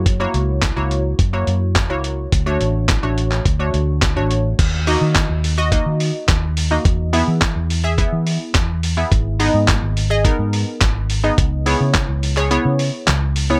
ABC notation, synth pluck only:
X:1
M:4/4
L:1/16
Q:1/4=106
K:D#phr
V:1 name="Synth pluck"
z [A,EFc]2 z2 [A,EFc]2 z2 [A,EFc]2 z2 [A,EFc]2 z | z [=A,=DFc]2 z2 [A,DFc]2 z2 [A,DFc]2 z2 [A,DFc]2 z | z2 [A,DFd]2 z3 [Fd] [A,DFd]3 z4 [A,DFd] | z2 [B,EGe]2 z3 [Ge] [B,EGe]3 z4 [B,EGe] |
z2 [B,DGd]2 z3 [Gd] [B,DGA]3 z4 [B,DGd] | z2 [B,EGc]2 z3 [Gc] [B,EGc]3 z4 [B,EGc] |]